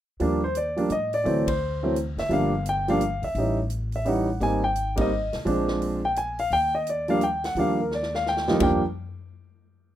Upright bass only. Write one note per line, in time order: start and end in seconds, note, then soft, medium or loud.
0.20 0.86 D#2 medium
0.90 1.23 A2 medium
1.25 2.14 D2 medium
2.17 2.29 F#1 medium
2.29 3.19 G1 medium
3.22 3.34 A#1 medium
3.35 4.37 A1 medium
4.40 5.29 G#1 medium
5.34 5.45 B1 medium
5.46 6.47 A#1 medium
6.50 7.52 D#2 medium
7.55 8.57 D#2 medium
8.60 8.81 D#2 medium